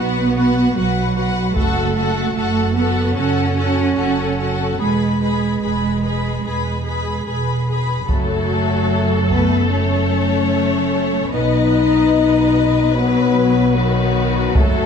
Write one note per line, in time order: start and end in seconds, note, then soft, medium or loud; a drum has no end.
0.00 0.67 B1 medium
0.00 0.74 B3 medium
0.00 0.35 F#4 soft
0.00 0.36 B4 soft
0.00 0.36 F#5 soft
0.36 0.76 F#4 soft
0.36 0.76 B4 soft
0.36 0.76 F#5 soft
0.75 1.47 B1 medium
0.75 1.56 F#3 medium
0.75 1.16 F#4 soft
0.75 1.16 B4 soft
0.75 1.16 F#5 soft
1.17 1.56 F#4 soft
1.17 1.56 B4 soft
1.17 1.56 F#5 soft
1.55 2.27 F#1 medium
1.55 2.74 A3 medium
1.55 1.96 F#4 medium
1.55 1.96 A4 medium
1.55 1.95 A4 medium
1.55 1.94 F#5 soft
1.55 taiko soft
1.96 2.36 F#4 soft
1.96 2.36 A4 soft
1.96 2.36 A4 medium
1.96 2.35 F#5 soft
2.37 3.08 F#1 medium
2.37 2.76 F#4 soft
2.37 2.75 A4 soft
2.37 2.76 A4 soft
2.37 2.76 F#5 soft
2.76 3.16 B3 medium
2.76 3.16 F#4 soft
2.76 3.16 A4 soft
2.76 3.15 F#5 soft
3.16 3.88 F#1 medium
3.16 4.80 C#4 medium
3.16 3.57 F#4 soft
3.16 3.56 A4 soft
3.16 3.57 A4 soft
3.16 3.56 F#5 soft
3.57 3.97 F#4 soft
3.57 3.96 A4 soft
3.57 3.97 A4 soft
3.57 3.95 F#5 soft
3.96 4.70 F#1 soft
3.96 4.38 F#4 soft
3.96 4.38 A4 soft
3.96 4.37 F#5 soft
4.39 4.80 F#4 soft
4.39 4.80 A4 soft
4.39 4.79 F#5 soft
4.79 5.53 E1 soft
4.79 7.26 G#3 medium
4.79 5.21 G#4 soft
4.79 5.20 B4 soft
4.79 5.20 B5 soft
5.22 5.63 G#4 soft
5.22 5.61 B4 soft
5.22 5.61 B5 soft
5.62 6.35 E1 soft
5.62 6.04 G#4 soft
5.62 6.02 B4 soft
5.62 6.02 B5 soft
6.03 6.44 G#4 soft
6.03 6.43 B4 soft
6.03 6.43 B5 soft
6.44 7.17 E1 soft
6.44 6.85 G#4 soft
6.44 6.84 B4 soft
6.44 6.84 B5 soft
6.86 7.26 G#4 soft
6.86 7.25 B4 soft
6.86 7.26 B5 soft
7.26 8.00 E1 soft
7.26 7.67 G#4 soft
7.26 7.67 B4 soft
7.26 7.67 B5 soft
7.70 8.09 G#4 soft
7.70 8.09 B4 soft
7.70 8.09 B5 soft
8.08 11.29 F#1 soft
8.08 11.29 F#2 soft
8.08 9.27 F#3 medium
8.08 9.27 A3 medium
8.08 11.30 A4 soft
8.08 9.27 A4 medium
8.08 taiko medium
9.31 9.71 A3 medium
9.31 9.71 B3 medium
9.31 9.71 B4 medium
9.31 taiko soft
9.70 11.30 A3 medium
9.70 11.29 C#4 medium
9.70 11.30 C#5 medium
11.32 14.56 B1 medium
11.32 14.55 B2 soft
11.32 12.92 B3 medium
11.32 12.92 D#4 medium
11.32 14.52 B4 soft
11.32 12.92 D#5 medium
12.94 13.74 F#3 medium
12.94 13.75 B3 medium
12.94 13.75 B4 medium
13.76 14.56 D#3 medium
13.76 14.56 F#3 medium
13.76 14.54 F#4 medium
14.54 14.86 F#1 medium
14.54 14.86 F#2 medium
14.54 14.86 F#3 medium
14.54 14.86 A3 medium
14.54 14.86 A4 medium
14.54 taiko medium